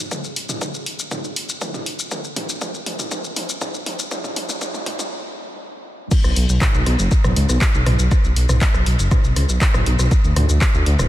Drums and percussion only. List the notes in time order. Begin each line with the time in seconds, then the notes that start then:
0.11 kick, mid tom, shaker
0.24 shaker
0.36 open hi-hat
0.49 mid tom, shaker
0.61 kick, mid tom, shaker
0.74 shaker
0.86 open hi-hat
0.99 shaker
1.11 kick, mid tom, shaker
1.24 shaker
1.36 open hi-hat
1.49 shaker
1.61 kick, mid tom, shaker
1.74 mid tom, shaker
1.86 open hi-hat
1.99 shaker
2.11 kick, mid tom, shaker
2.24 shaker
2.36 mid tom, open hi-hat
2.49 shaker
2.61 kick, mid tom, shaker
2.74 shaker
2.86 open hi-hat, mid tom
2.99 mid tom, shaker
3.11 kick, mid tom, shaker
3.24 shaker
3.36 open hi-hat, mid tom
3.49 shaker
3.61 kick, mid tom, shaker
3.74 shaker
3.86 open hi-hat, mid tom
3.99 shaker
4.11 kick, mid tom, shaker
4.24 mid tom, shaker
4.36 open hi-hat, mid tom
4.49 mid tom, shaker
4.61 kick, mid tom, shaker
4.74 mid tom, shaker
4.86 mid tom, open hi-hat
4.99 mid tom, shaker
6.11 kick, crash, shaker
6.24 cross-stick, shaker
6.36 open hi-hat
6.49 shaker
6.61 kick, cross-stick, clap, mid tom, shaker
6.74 shaker
6.86 cross-stick, open hi-hat
6.99 shaker
7.11 kick, shaker
7.24 cross-stick, mid tom, shaker
7.36 open hi-hat
7.49 cross-stick, shaker
7.61 kick, clap, shaker
7.74 shaker
7.86 cross-stick, mid tom, open hi-hat
7.99 shaker
8.11 kick, cross-stick, shaker
8.24 shaker
8.36 open hi-hat
8.49 cross-stick, mid tom, shaker
8.61 kick, clap, shaker
8.74 cross-stick, shaker
8.86 open hi-hat
8.99 shaker
9.11 kick, cross-stick, mid tom, shaker
9.24 shaker
9.36 cross-stick, open hi-hat
9.49 shaker
9.61 kick, clap, shaker
9.74 cross-stick, mid tom, shaker
9.86 open hi-hat
9.99 cross-stick, shaker
10.11 kick, shaker
10.24 shaker
10.36 cross-stick, mid tom, open hi-hat
10.49 shaker
10.61 kick, cross-stick, clap, shaker
10.74 shaker
10.86 open hi-hat
10.99 cross-stick, mid tom, shaker